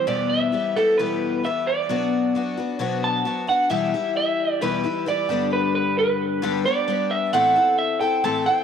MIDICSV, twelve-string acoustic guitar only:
0, 0, Header, 1, 2, 480
1, 0, Start_track
1, 0, Key_signature, 1, "minor"
1, 0, Tempo, 453515
1, 86, Time_signature, 4, 2, 24, 8
1, 9141, End_track
2, 0, Start_track
2, 0, Title_t, "Twelve-string acoustic guitar"
2, 0, Program_c, 0, 25
2, 73, Note_on_c, 0, 40, 65
2, 73, Note_on_c, 0, 47, 73
2, 75, Note_on_c, 0, 52, 68
2, 79, Note_on_c, 0, 55, 69
2, 83, Note_on_c, 0, 59, 71
2, 85, Note_on_c, 0, 67, 77
2, 538, Note_off_c, 0, 52, 0
2, 548, Note_off_c, 0, 55, 0
2, 550, Note_on_c, 0, 52, 54
2, 560, Note_off_c, 0, 40, 0
2, 560, Note_off_c, 0, 47, 0
2, 561, Note_off_c, 0, 59, 0
2, 561, Note_off_c, 0, 67, 0
2, 561, Note_on_c, 0, 55, 61
2, 565, Note_on_c, 0, 59, 60
2, 574, Note_on_c, 0, 67, 63
2, 796, Note_off_c, 0, 67, 0
2, 798, Note_off_c, 0, 52, 0
2, 803, Note_off_c, 0, 59, 0
2, 804, Note_off_c, 0, 55, 0
2, 809, Note_on_c, 0, 67, 57
2, 816, Note_on_c, 0, 59, 51
2, 824, Note_on_c, 0, 55, 48
2, 829, Note_on_c, 0, 52, 47
2, 1041, Note_off_c, 0, 52, 0
2, 1046, Note_off_c, 0, 55, 0
2, 1048, Note_off_c, 0, 67, 0
2, 1050, Note_on_c, 0, 40, 77
2, 1051, Note_off_c, 0, 59, 0
2, 1054, Note_on_c, 0, 47, 64
2, 1054, Note_on_c, 0, 52, 71
2, 1058, Note_on_c, 0, 55, 75
2, 1063, Note_on_c, 0, 59, 71
2, 1065, Note_on_c, 0, 67, 73
2, 1513, Note_off_c, 0, 52, 0
2, 1526, Note_off_c, 0, 55, 0
2, 1526, Note_on_c, 0, 52, 58
2, 1529, Note_off_c, 0, 40, 0
2, 1531, Note_off_c, 0, 47, 0
2, 1536, Note_off_c, 0, 67, 0
2, 1539, Note_on_c, 0, 55, 61
2, 1545, Note_off_c, 0, 59, 0
2, 1548, Note_on_c, 0, 67, 64
2, 1549, Note_on_c, 0, 59, 57
2, 2001, Note_off_c, 0, 52, 0
2, 2002, Note_on_c, 0, 47, 70
2, 2006, Note_on_c, 0, 54, 75
2, 2010, Note_off_c, 0, 55, 0
2, 2011, Note_off_c, 0, 59, 0
2, 2014, Note_on_c, 0, 59, 82
2, 2015, Note_on_c, 0, 62, 85
2, 2018, Note_off_c, 0, 67, 0
2, 2022, Note_on_c, 0, 66, 82
2, 2475, Note_off_c, 0, 54, 0
2, 2484, Note_off_c, 0, 59, 0
2, 2485, Note_off_c, 0, 47, 0
2, 2485, Note_off_c, 0, 62, 0
2, 2487, Note_on_c, 0, 54, 66
2, 2495, Note_off_c, 0, 66, 0
2, 2497, Note_on_c, 0, 59, 67
2, 2498, Note_on_c, 0, 62, 72
2, 2510, Note_on_c, 0, 66, 68
2, 2711, Note_off_c, 0, 66, 0
2, 2723, Note_off_c, 0, 62, 0
2, 2724, Note_on_c, 0, 66, 67
2, 2728, Note_off_c, 0, 54, 0
2, 2733, Note_off_c, 0, 59, 0
2, 2736, Note_on_c, 0, 62, 59
2, 2747, Note_on_c, 0, 59, 56
2, 2952, Note_off_c, 0, 59, 0
2, 2954, Note_on_c, 0, 47, 74
2, 2958, Note_off_c, 0, 62, 0
2, 2959, Note_on_c, 0, 54, 90
2, 2962, Note_off_c, 0, 66, 0
2, 2965, Note_on_c, 0, 59, 74
2, 2971, Note_on_c, 0, 62, 85
2, 2975, Note_on_c, 0, 66, 88
2, 3429, Note_off_c, 0, 54, 0
2, 3441, Note_off_c, 0, 47, 0
2, 3441, Note_off_c, 0, 59, 0
2, 3441, Note_on_c, 0, 54, 69
2, 3447, Note_off_c, 0, 62, 0
2, 3451, Note_off_c, 0, 66, 0
2, 3453, Note_on_c, 0, 59, 62
2, 3460, Note_on_c, 0, 62, 59
2, 3467, Note_on_c, 0, 66, 65
2, 3664, Note_off_c, 0, 66, 0
2, 3676, Note_on_c, 0, 66, 52
2, 3682, Note_off_c, 0, 62, 0
2, 3685, Note_off_c, 0, 54, 0
2, 3691, Note_off_c, 0, 59, 0
2, 3695, Note_on_c, 0, 62, 51
2, 3704, Note_on_c, 0, 59, 45
2, 3912, Note_on_c, 0, 40, 83
2, 3915, Note_on_c, 0, 47, 75
2, 3922, Note_off_c, 0, 66, 0
2, 3922, Note_on_c, 0, 52, 85
2, 3923, Note_off_c, 0, 59, 0
2, 3925, Note_off_c, 0, 62, 0
2, 3927, Note_on_c, 0, 55, 80
2, 3928, Note_on_c, 0, 67, 93
2, 3929, Note_on_c, 0, 64, 81
2, 4157, Note_off_c, 0, 67, 0
2, 4160, Note_off_c, 0, 40, 0
2, 4161, Note_off_c, 0, 47, 0
2, 4165, Note_off_c, 0, 52, 0
2, 4167, Note_off_c, 0, 55, 0
2, 4168, Note_off_c, 0, 64, 0
2, 4170, Note_on_c, 0, 67, 54
2, 4179, Note_on_c, 0, 64, 46
2, 4185, Note_on_c, 0, 55, 45
2, 4193, Note_on_c, 0, 52, 44
2, 4876, Note_off_c, 0, 52, 0
2, 4884, Note_on_c, 0, 40, 72
2, 4887, Note_off_c, 0, 64, 0
2, 4889, Note_on_c, 0, 52, 90
2, 4892, Note_off_c, 0, 55, 0
2, 4893, Note_on_c, 0, 47, 72
2, 4896, Note_on_c, 0, 55, 78
2, 4900, Note_on_c, 0, 64, 83
2, 4903, Note_off_c, 0, 67, 0
2, 4907, Note_on_c, 0, 67, 80
2, 5106, Note_off_c, 0, 67, 0
2, 5114, Note_off_c, 0, 64, 0
2, 5119, Note_on_c, 0, 67, 56
2, 5125, Note_off_c, 0, 40, 0
2, 5126, Note_off_c, 0, 55, 0
2, 5126, Note_on_c, 0, 64, 61
2, 5128, Note_off_c, 0, 52, 0
2, 5130, Note_off_c, 0, 47, 0
2, 5139, Note_on_c, 0, 55, 51
2, 5150, Note_on_c, 0, 52, 42
2, 5345, Note_off_c, 0, 52, 0
2, 5357, Note_off_c, 0, 55, 0
2, 5358, Note_on_c, 0, 52, 57
2, 5363, Note_off_c, 0, 64, 0
2, 5363, Note_off_c, 0, 67, 0
2, 5369, Note_on_c, 0, 55, 66
2, 5376, Note_on_c, 0, 64, 68
2, 5388, Note_on_c, 0, 67, 66
2, 5585, Note_off_c, 0, 67, 0
2, 5598, Note_on_c, 0, 67, 64
2, 5602, Note_off_c, 0, 52, 0
2, 5604, Note_off_c, 0, 64, 0
2, 5608, Note_off_c, 0, 55, 0
2, 5609, Note_on_c, 0, 62, 66
2, 5621, Note_on_c, 0, 59, 66
2, 5628, Note_on_c, 0, 55, 62
2, 5632, Note_on_c, 0, 50, 55
2, 5639, Note_on_c, 0, 43, 52
2, 6782, Note_off_c, 0, 43, 0
2, 6792, Note_off_c, 0, 50, 0
2, 6795, Note_off_c, 0, 55, 0
2, 6795, Note_on_c, 0, 43, 81
2, 6797, Note_off_c, 0, 59, 0
2, 6800, Note_off_c, 0, 62, 0
2, 6801, Note_off_c, 0, 67, 0
2, 6805, Note_on_c, 0, 50, 80
2, 6808, Note_on_c, 0, 55, 85
2, 6810, Note_on_c, 0, 59, 83
2, 6812, Note_on_c, 0, 62, 84
2, 6819, Note_on_c, 0, 67, 85
2, 7034, Note_off_c, 0, 67, 0
2, 7040, Note_off_c, 0, 43, 0
2, 7045, Note_off_c, 0, 50, 0
2, 7045, Note_off_c, 0, 62, 0
2, 7047, Note_off_c, 0, 55, 0
2, 7047, Note_on_c, 0, 67, 59
2, 7048, Note_off_c, 0, 59, 0
2, 7058, Note_on_c, 0, 62, 53
2, 7064, Note_on_c, 0, 59, 52
2, 7073, Note_on_c, 0, 55, 43
2, 7266, Note_off_c, 0, 55, 0
2, 7272, Note_off_c, 0, 59, 0
2, 7278, Note_on_c, 0, 55, 63
2, 7285, Note_on_c, 0, 59, 62
2, 7286, Note_off_c, 0, 62, 0
2, 7286, Note_off_c, 0, 67, 0
2, 7298, Note_on_c, 0, 62, 68
2, 7304, Note_on_c, 0, 67, 65
2, 7758, Note_on_c, 0, 45, 86
2, 7761, Note_off_c, 0, 59, 0
2, 7762, Note_off_c, 0, 55, 0
2, 7765, Note_on_c, 0, 60, 80
2, 7766, Note_off_c, 0, 62, 0
2, 7766, Note_on_c, 0, 52, 89
2, 7770, Note_off_c, 0, 67, 0
2, 7771, Note_on_c, 0, 64, 88
2, 7774, Note_on_c, 0, 69, 93
2, 7987, Note_off_c, 0, 69, 0
2, 7998, Note_off_c, 0, 64, 0
2, 7999, Note_on_c, 0, 69, 56
2, 8002, Note_off_c, 0, 45, 0
2, 8006, Note_off_c, 0, 52, 0
2, 8006, Note_off_c, 0, 60, 0
2, 8011, Note_on_c, 0, 64, 46
2, 8023, Note_on_c, 0, 60, 43
2, 8471, Note_off_c, 0, 69, 0
2, 8475, Note_on_c, 0, 69, 63
2, 8481, Note_off_c, 0, 64, 0
2, 8494, Note_on_c, 0, 64, 55
2, 8495, Note_off_c, 0, 60, 0
2, 8507, Note_on_c, 0, 60, 47
2, 8713, Note_off_c, 0, 60, 0
2, 8717, Note_off_c, 0, 64, 0
2, 8720, Note_on_c, 0, 45, 80
2, 8720, Note_on_c, 0, 52, 78
2, 8721, Note_off_c, 0, 69, 0
2, 8726, Note_on_c, 0, 60, 77
2, 8729, Note_on_c, 0, 64, 83
2, 8735, Note_on_c, 0, 69, 91
2, 8943, Note_off_c, 0, 69, 0
2, 8956, Note_on_c, 0, 69, 60
2, 8962, Note_off_c, 0, 64, 0
2, 8963, Note_off_c, 0, 45, 0
2, 8963, Note_off_c, 0, 52, 0
2, 8966, Note_off_c, 0, 60, 0
2, 8974, Note_on_c, 0, 64, 53
2, 8978, Note_on_c, 0, 60, 46
2, 9141, Note_off_c, 0, 60, 0
2, 9141, Note_off_c, 0, 64, 0
2, 9141, Note_off_c, 0, 69, 0
2, 9141, End_track
0, 0, End_of_file